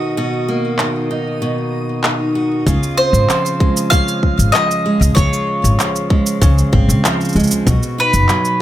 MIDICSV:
0, 0, Header, 1, 6, 480
1, 0, Start_track
1, 0, Tempo, 625000
1, 127, Time_signature, 4, 2, 24, 8
1, 6618, End_track
2, 0, Start_track
2, 0, Title_t, "Synth texture"
2, 0, Program_c, 0, 99
2, 0, Note_on_c, 0, 75, 79
2, 0, Note_on_c, 0, 87, 80
2, 2054, Note_off_c, 0, 75, 0
2, 2056, Note_off_c, 0, 87, 0
2, 6618, End_track
3, 0, Start_track
3, 0, Title_t, "Mandolin"
3, 0, Program_c, 1, 25
3, 2285, Note_on_c, 1, 72, 93
3, 2996, Note_on_c, 1, 77, 102
3, 3027, Note_off_c, 1, 72, 0
3, 3473, Note_on_c, 1, 75, 106
3, 3496, Note_off_c, 1, 77, 0
3, 3929, Note_off_c, 1, 75, 0
3, 3953, Note_on_c, 1, 73, 87
3, 4889, Note_off_c, 1, 73, 0
3, 6143, Note_on_c, 1, 71, 84
3, 6618, Note_off_c, 1, 71, 0
3, 6618, End_track
4, 0, Start_track
4, 0, Title_t, "Steel-string acoustic guitar"
4, 0, Program_c, 2, 25
4, 0, Note_on_c, 2, 47, 78
4, 0, Note_on_c, 2, 51, 61
4, 0, Note_on_c, 2, 58, 52
4, 0, Note_on_c, 2, 63, 47
4, 0, Note_on_c, 2, 66, 57
4, 124, Note_off_c, 2, 47, 0
4, 129, Note_off_c, 2, 66, 0
4, 133, Note_on_c, 2, 47, 71
4, 138, Note_on_c, 2, 66, 60
4, 363, Note_off_c, 2, 58, 0
4, 372, Note_on_c, 2, 58, 53
4, 604, Note_off_c, 2, 51, 0
4, 613, Note_on_c, 2, 51, 58
4, 840, Note_off_c, 2, 63, 0
4, 849, Note_on_c, 2, 63, 51
4, 1080, Note_off_c, 2, 47, 0
4, 1089, Note_on_c, 2, 47, 72
4, 1558, Note_off_c, 2, 51, 0
4, 1567, Note_on_c, 2, 51, 67
4, 1798, Note_off_c, 2, 66, 0
4, 1807, Note_on_c, 2, 66, 55
4, 2047, Note_off_c, 2, 47, 0
4, 2050, Note_on_c, 2, 49, 86
4, 2051, Note_off_c, 2, 66, 0
4, 2054, Note_on_c, 2, 65, 68
4, 2095, Note_off_c, 2, 51, 0
4, 2096, Note_off_c, 2, 63, 0
4, 2097, Note_off_c, 2, 58, 0
4, 2285, Note_on_c, 2, 60, 60
4, 2530, Note_on_c, 2, 53, 68
4, 2773, Note_on_c, 2, 56, 56
4, 2999, Note_off_c, 2, 49, 0
4, 3008, Note_on_c, 2, 49, 82
4, 3246, Note_off_c, 2, 60, 0
4, 3478, Note_off_c, 2, 53, 0
4, 3487, Note_on_c, 2, 53, 74
4, 3721, Note_off_c, 2, 56, 0
4, 3730, Note_on_c, 2, 56, 63
4, 3957, Note_off_c, 2, 49, 0
4, 3960, Note_off_c, 2, 65, 0
4, 3966, Note_on_c, 2, 49, 79
4, 3970, Note_on_c, 2, 65, 71
4, 4436, Note_off_c, 2, 53, 0
4, 4445, Note_on_c, 2, 53, 67
4, 4677, Note_off_c, 2, 56, 0
4, 4686, Note_on_c, 2, 56, 58
4, 4917, Note_off_c, 2, 49, 0
4, 4926, Note_on_c, 2, 49, 87
4, 5165, Note_on_c, 2, 60, 63
4, 5406, Note_off_c, 2, 53, 0
4, 5414, Note_on_c, 2, 53, 74
4, 5641, Note_off_c, 2, 56, 0
4, 5651, Note_on_c, 2, 56, 63
4, 5884, Note_off_c, 2, 49, 0
4, 5887, Note_on_c, 2, 47, 80
4, 5888, Note_off_c, 2, 65, 0
4, 5891, Note_on_c, 2, 66, 65
4, 5933, Note_off_c, 2, 60, 0
4, 5936, Note_off_c, 2, 56, 0
4, 5938, Note_off_c, 2, 53, 0
4, 6131, Note_on_c, 2, 63, 64
4, 6368, Note_on_c, 2, 54, 71
4, 6618, Note_off_c, 2, 47, 0
4, 6618, Note_off_c, 2, 54, 0
4, 6618, Note_off_c, 2, 63, 0
4, 6618, Note_off_c, 2, 66, 0
4, 6618, End_track
5, 0, Start_track
5, 0, Title_t, "Upright bass"
5, 0, Program_c, 3, 32
5, 2047, Note_on_c, 3, 37, 97
5, 2121, Note_off_c, 3, 37, 0
5, 2404, Note_on_c, 3, 32, 87
5, 2479, Note_off_c, 3, 32, 0
5, 3370, Note_on_c, 3, 32, 79
5, 3442, Note_off_c, 3, 32, 0
5, 3847, Note_on_c, 3, 37, 99
5, 3921, Note_off_c, 3, 37, 0
5, 3968, Note_on_c, 3, 37, 93
5, 4041, Note_off_c, 3, 37, 0
5, 4331, Note_on_c, 3, 32, 86
5, 4403, Note_off_c, 3, 32, 0
5, 4931, Note_on_c, 3, 37, 103
5, 5077, Note_off_c, 3, 37, 0
5, 5172, Note_on_c, 3, 32, 92
5, 5288, Note_on_c, 3, 37, 92
5, 5300, Note_off_c, 3, 32, 0
5, 5361, Note_off_c, 3, 37, 0
5, 5648, Note_on_c, 3, 37, 86
5, 5721, Note_off_c, 3, 37, 0
5, 5887, Note_on_c, 3, 35, 98
5, 5961, Note_off_c, 3, 35, 0
5, 6248, Note_on_c, 3, 30, 92
5, 6322, Note_off_c, 3, 30, 0
5, 6618, End_track
6, 0, Start_track
6, 0, Title_t, "Drums"
6, 602, Note_on_c, 9, 39, 84
6, 679, Note_off_c, 9, 39, 0
6, 1562, Note_on_c, 9, 39, 89
6, 1639, Note_off_c, 9, 39, 0
6, 2047, Note_on_c, 9, 36, 116
6, 2054, Note_on_c, 9, 69, 54
6, 2124, Note_off_c, 9, 36, 0
6, 2131, Note_off_c, 9, 69, 0
6, 2175, Note_on_c, 9, 69, 34
6, 2252, Note_off_c, 9, 69, 0
6, 2413, Note_on_c, 9, 69, 63
6, 2490, Note_off_c, 9, 69, 0
6, 2529, Note_on_c, 9, 39, 102
6, 2535, Note_on_c, 9, 69, 59
6, 2605, Note_off_c, 9, 39, 0
6, 2612, Note_off_c, 9, 69, 0
6, 2657, Note_on_c, 9, 69, 32
6, 2734, Note_off_c, 9, 69, 0
6, 2768, Note_on_c, 9, 36, 109
6, 2845, Note_off_c, 9, 36, 0
6, 2894, Note_on_c, 9, 69, 57
6, 2971, Note_off_c, 9, 69, 0
6, 3008, Note_on_c, 9, 36, 109
6, 3014, Note_on_c, 9, 69, 56
6, 3085, Note_off_c, 9, 36, 0
6, 3091, Note_off_c, 9, 69, 0
6, 3134, Note_on_c, 9, 69, 33
6, 3211, Note_off_c, 9, 69, 0
6, 3248, Note_on_c, 9, 36, 59
6, 3325, Note_off_c, 9, 36, 0
6, 3375, Note_on_c, 9, 69, 62
6, 3452, Note_off_c, 9, 69, 0
6, 3488, Note_on_c, 9, 39, 104
6, 3495, Note_on_c, 9, 69, 52
6, 3565, Note_off_c, 9, 39, 0
6, 3572, Note_off_c, 9, 69, 0
6, 3618, Note_on_c, 9, 69, 35
6, 3695, Note_off_c, 9, 69, 0
6, 3857, Note_on_c, 9, 69, 72
6, 3934, Note_off_c, 9, 69, 0
6, 3967, Note_on_c, 9, 36, 127
6, 3975, Note_on_c, 9, 69, 55
6, 4044, Note_off_c, 9, 36, 0
6, 4052, Note_off_c, 9, 69, 0
6, 4095, Note_on_c, 9, 69, 35
6, 4172, Note_off_c, 9, 69, 0
6, 4337, Note_on_c, 9, 69, 70
6, 4414, Note_off_c, 9, 69, 0
6, 4450, Note_on_c, 9, 39, 104
6, 4456, Note_on_c, 9, 69, 56
6, 4527, Note_off_c, 9, 39, 0
6, 4533, Note_off_c, 9, 69, 0
6, 4576, Note_on_c, 9, 69, 36
6, 4653, Note_off_c, 9, 69, 0
6, 4688, Note_on_c, 9, 36, 108
6, 4764, Note_off_c, 9, 36, 0
6, 4811, Note_on_c, 9, 69, 62
6, 4888, Note_off_c, 9, 69, 0
6, 4927, Note_on_c, 9, 36, 119
6, 4934, Note_on_c, 9, 69, 62
6, 5004, Note_off_c, 9, 36, 0
6, 5011, Note_off_c, 9, 69, 0
6, 5056, Note_on_c, 9, 69, 34
6, 5133, Note_off_c, 9, 69, 0
6, 5168, Note_on_c, 9, 36, 104
6, 5244, Note_off_c, 9, 36, 0
6, 5297, Note_on_c, 9, 69, 70
6, 5374, Note_off_c, 9, 69, 0
6, 5410, Note_on_c, 9, 39, 105
6, 5416, Note_on_c, 9, 69, 62
6, 5487, Note_off_c, 9, 39, 0
6, 5493, Note_off_c, 9, 69, 0
6, 5537, Note_on_c, 9, 69, 15
6, 5566, Note_off_c, 9, 69, 0
6, 5566, Note_on_c, 9, 69, 19
6, 5598, Note_off_c, 9, 69, 0
6, 5598, Note_on_c, 9, 69, 19
6, 5626, Note_off_c, 9, 69, 0
6, 5626, Note_on_c, 9, 69, 23
6, 5652, Note_off_c, 9, 69, 0
6, 5652, Note_on_c, 9, 69, 26
6, 5680, Note_off_c, 9, 69, 0
6, 5680, Note_on_c, 9, 69, 27
6, 5711, Note_off_c, 9, 69, 0
6, 5711, Note_on_c, 9, 69, 30
6, 5739, Note_off_c, 9, 69, 0
6, 5739, Note_on_c, 9, 69, 33
6, 5768, Note_off_c, 9, 69, 0
6, 5768, Note_on_c, 9, 69, 69
6, 5845, Note_off_c, 9, 69, 0
6, 5888, Note_on_c, 9, 36, 127
6, 5893, Note_on_c, 9, 69, 56
6, 5965, Note_off_c, 9, 36, 0
6, 5970, Note_off_c, 9, 69, 0
6, 6012, Note_on_c, 9, 69, 35
6, 6089, Note_off_c, 9, 69, 0
6, 6249, Note_on_c, 9, 69, 67
6, 6326, Note_off_c, 9, 69, 0
6, 6363, Note_on_c, 9, 39, 99
6, 6369, Note_on_c, 9, 69, 57
6, 6439, Note_off_c, 9, 39, 0
6, 6446, Note_off_c, 9, 69, 0
6, 6489, Note_on_c, 9, 69, 38
6, 6565, Note_off_c, 9, 69, 0
6, 6618, End_track
0, 0, End_of_file